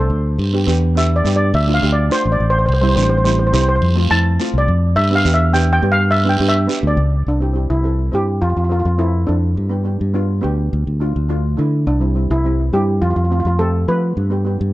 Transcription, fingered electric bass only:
0.10 0.36 D2 medium
0.38 0.65 G2 medium
0.67 1.21 E2 medium
1.25 1.51 G2 medium
1.54 1.80 D2 loud
1.83 2.09 D2 medium
2.25 2.38 A1 medium
2.40 2.66 A1 medium
2.69 2.94 C2 medium
2.96 3.50 A1 medium
3.53 3.80 C2 medium
3.82 4.08 F2 medium
4.11 4.37 F2 medium
4.54 4.67 C2 medium
4.68 4.94 F2 medium
4.97 5.23 G2 medium
5.25 5.79 E2 medium
5.83 6.36 G2 medium
6.40 6.66 G2 medium
6.83 6.96 D2 medium
6.97 7.23 C#2 medium
7.27 7.66 C2 medium
7.70 8.09 C2 medium
8.13 8.39 G2 medium
8.42 8.55 F2 medium
8.56 8.82 F2 medium
8.85 9.24 F2 medium
9.29 9.54 F2 medium
9.57 9.96 G2 medium
10.01 10.39 G2 medium
10.44 10.70 D2 medium
10.73 10.85 D2 medium
10.87 11.13 D2 medium
11.16 11.55 D2 medium
11.59 11.84 D3 medium
11.87 12.26 C2 medium
12.30 12.69 C2 medium
12.73 12.99 G2 medium
13.02 13.15 F2 medium
13.16 13.42 F2 medium
13.45 13.84 F2 medium
13.88 14.14 F3 medium
14.17 14.56 G2 medium
14.61 14.73 G2 medium

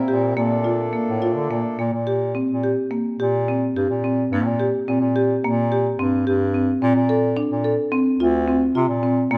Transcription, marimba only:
0.08 0.28 G4 medium
0.37 0.56 A#3 medium
0.64 0.84 F4 medium
0.93 1.13 A#3 medium
1.22 1.42 F4 medium
1.51 1.70 A#3 medium
1.79 1.99 A#3 medium
2.07 2.27 G4 medium
2.35 2.55 C4 medium
2.64 2.83 G4 medium
2.91 3.11 A#3 medium
3.20 3.39 G4 medium
3.48 3.68 C4 medium
3.77 3.96 G4 medium
4.04 4.24 C4 medium
4.33 4.52 A#3 medium
4.60 4.79 G4 medium
4.88 5.08 C4 medium
5.16 5.35 G4 medium
5.44 5.64 A#3 medium
5.72 5.91 G4 medium
5.99 6.19 C4 medium
6.27 6.46 G4 medium
6.54 6.74 C4 medium
6.82 7.02 C4 medium
7.09 7.29 A4 medium
7.37 7.56 D4 medium
7.64 7.84 A4 medium
7.92 8.12 C4 medium
8.20 8.40 F4 medium
8.48 8.67 C4 medium
8.75 8.95 F4 medium
9.03 9.23 C4 medium
9.31 9.38 A#3 medium

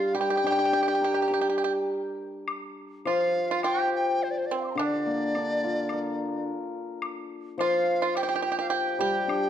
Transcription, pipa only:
0.00 0.13 F4 medium
0.15 0.20 G4 medium
0.21 0.29 G4 medium
0.30 0.36 G4 medium
0.37 0.44 G4 soft
0.47 0.51 G4 medium
0.52 0.58 G4 soft
0.59 0.64 G4 soft
0.65 0.72 G4 soft
0.73 0.81 G4 medium
0.83 0.87 G4 soft
0.88 0.94 G4 medium
0.95 1.03 G4 soft
1.04 1.11 G4 medium
1.14 1.20 G4 soft
1.22 1.27 G4 soft
1.28 1.32 G4 soft
1.34 1.40 G4 soft
1.41 1.48 G4 soft
1.50 1.57 G4 medium
1.58 1.63 G4 soft
1.64 1.72 G4 medium
3.07 3.47 F4 medium
3.51 3.64 F4 medium
3.64 4.17 G4 medium
4.51 4.75 C4 medium
4.79 6.44 D4 medium
7.61 7.99 F4 medium
8.02 8.15 F4 medium
8.17 8.22 G4 medium
8.23 8.27 G4 medium
8.29 8.34 G4 medium
8.36 8.41 G4 medium
8.42 8.50 G4 medium
8.52 8.57 G4 medium
8.59 8.66 G4 medium
8.70 8.97 G4 medium
9.01 9.49 G4 medium

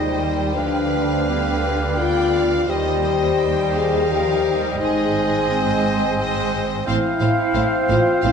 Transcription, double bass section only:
0.00 0.55 D#2 soft
0.56 2.68 D2 medium
2.69 4.77 D#2 medium
4.81 6.82 G#1 medium
6.86 6.94 A1 medium
7.20 7.28 A1 medium
7.54 7.62 A1 medium
7.89 7.97 A1 medium
8.23 8.31 A1 medium

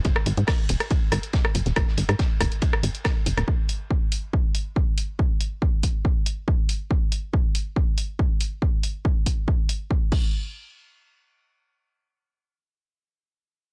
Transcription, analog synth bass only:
0.05 0.12 G#1 loud
0.26 0.33 G#1 medium
0.38 0.44 G#2 medium
0.69 0.76 D#1 loud
1.12 1.19 G#1 medium
1.55 1.62 F#1 medium
1.66 1.73 D#1 medium
1.76 1.83 G#1 loud
1.98 2.05 G#1 medium
2.09 2.15 G#2 medium
2.41 2.48 D#1 loud
2.83 2.90 G#1 medium
3.26 3.33 F#1 medium
3.37 3.44 D#1 medium

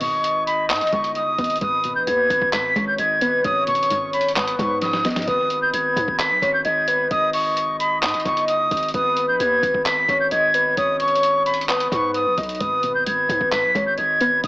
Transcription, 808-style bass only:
0.00 0.71 G#1 loud
0.70 0.83 G#2 loud
0.81 0.92 G#1 loud
0.93 1.37 G1 loud
1.38 1.60 G#1 loud
1.61 1.97 G#1 loud
1.96 2.07 A#1 loud
2.07 2.29 D#2 loud
2.30 2.41 G#1 loud
2.42 2.75 G#1 loud
2.76 2.98 G#1 loud
2.99 3.43 G#1 loud
3.45 4.55 G#1 loud
4.59 5.06 G#2 loud
5.05 5.18 A#1 loud
5.16 5.27 G#2 loud
5.28 5.72 G#1 loud
5.74 5.96 G#1 loud
5.96 6.07 G#2 loud
6.08 6.32 G#1 loud
6.31 6.42 B1 loud
6.42 6.64 G#1 loud
6.65 7.09 G#1 loud
7.11 8.04 G#1 loud
8.03 8.15 G#2 loud
8.14 8.25 G#1 loud
8.25 8.69 G1 loud
8.71 8.93 G#1 loud
8.94 9.30 G#1 loud
9.28 9.39 A#1 loud
9.40 9.62 D#2 loud
9.63 9.74 G#1 loud
9.74 10.07 G#1 loud
10.09 10.31 G#1 loud
10.32 10.76 G#1 loud
10.77 11.88 G#1 loud
11.92 12.28 G#2 loud
12.26 12.37 A#1 loud
12.38 12.60 B1 loud
12.61 13.05 G#1 loud
13.06 13.28 G#1 loud
13.29 13.40 G#2 loud
13.41 13.65 G#1 loud
13.64 13.74 B1 loud
13.75 13.97 G#1 loud
13.98 14.42 G#1 loud
14.44 14.47 G#1 loud

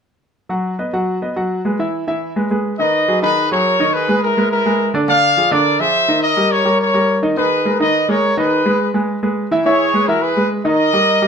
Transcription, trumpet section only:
2.79 3.20 B4 medium
2.79 3.19 D#5 medium
3.22 3.49 G#4 medium
3.22 3.49 B4 medium
3.51 3.91 A#4 medium
3.51 3.91 C#5 medium
3.94 4.23 G#4 medium
3.94 4.23 B4 medium
4.23 4.50 E4 medium
4.23 4.49 A#4 medium
4.51 4.91 E4 medium
4.51 4.91 A#4 medium
5.08 5.49 D5 medium
5.08 5.48 F5 loud
5.52 5.80 A#4 medium
5.52 5.80 D5 medium
5.80 6.23 C5 medium
5.80 6.23 E5 medium
6.23 6.50 A#4 medium
6.23 6.49 D#5 medium
6.51 6.80 A#4 medium
6.51 6.79 C#5 medium
6.80 7.20 A#4 medium
6.80 7.20 C#5 medium
7.38 7.77 G#4 medium
7.38 7.77 B4 medium
7.81 8.07 B4 medium
7.81 8.07 D#5 medium
8.09 8.37 A#4 medium
8.09 8.37 C#5 medium
8.38 8.90 G#4 medium
8.38 8.91 B4 medium
9.66 10.06 G#4 medium
9.66 10.05 C#5 medium
10.08 10.23 F#4 medium
10.08 10.22 A#4 medium
10.22 10.51 G#4 medium
10.22 10.51 B4 medium
10.66 11.28 A#4 medium
10.66 11.28 D#5 medium

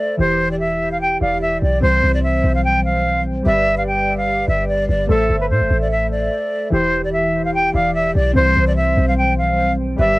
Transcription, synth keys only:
0.00 0.15 A3 medium
0.00 0.16 A4 medium
0.00 0.16 C5 medium
0.00 0.17 E5 medium
0.17 1.18 E3 medium
0.17 1.19 E4 medium
0.17 1.20 G4 medium
1.20 1.82 E3 medium
1.20 1.82 E4 medium
1.20 1.83 G4 soft
1.20 1.83 D5 medium
1.80 3.43 E3 medium
1.80 3.42 G3 medium
1.80 3.41 C4 medium
1.85 3.44 C5 medium
3.43 5.04 G3 medium
3.43 5.05 G4 medium
3.43 5.06 B4 medium
3.47 5.07 D5 medium
5.07 6.68 A3 medium
5.07 6.69 A4 medium
5.07 6.70 C5 medium
5.11 6.70 E5 medium
6.70 7.71 E3 medium
6.70 7.72 E4 medium
6.70 7.73 G4 medium
7.73 8.35 E3 medium
7.73 8.35 E4 medium
7.73 8.36 G4 soft
7.73 8.36 D5 medium
8.33 9.96 E3 medium
8.33 9.95 G3 medium
8.33 9.94 C4 medium
8.38 9.97 C5 medium
9.96 10.19 G3 medium
9.96 10.19 G4 medium
9.96 10.19 B4 medium
10.01 10.19 D5 medium

